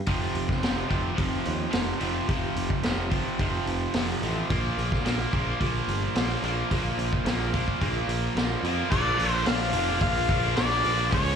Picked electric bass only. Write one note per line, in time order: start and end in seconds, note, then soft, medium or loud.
0.07 0.27 F1 medium
0.35 0.54 F1 medium
0.63 0.82 F1 medium
0.91 1.10 F1 medium
1.18 1.38 F1 medium
1.46 1.65 D#2 medium
1.73 1.93 F1 medium
2.01 2.20 F1 medium
2.28 2.48 F1 medium
2.56 2.75 F1 medium
2.85 3.23 F1 medium
3.39 3.59 F1 medium
3.66 3.86 F1 medium
3.95 4.14 F1 medium
4.22 4.41 A1 medium
4.50 4.69 A#1 loud
4.78 4.97 A#1 medium
5.06 5.25 A#1 loud
5.33 5.52 A#1 medium
5.61 5.80 A#1 medium
5.88 6.07 G1 medium
6.15 6.35 A#1 medium
6.42 6.62 A#1 medium
6.71 6.90 A#1 medium
6.97 7.17 A#1 medium
7.25 7.64 A#1 medium
7.81 8.01 A#1 medium
8.07 8.27 A#1 medium
8.35 8.55 A#1 medium
8.63 8.82 F2 medium
8.92 9.17 A#1 loud
9.18 9.44 A#1 medium
9.46 9.72 A#1 loud
9.73 9.99 F1 loud
10.01 10.27 A#1 medium
10.30 10.55 A#1 medium
10.57 10.82 A#1 medium
10.84 11.10 A#1 medium
11.12 11.36 C#2 loud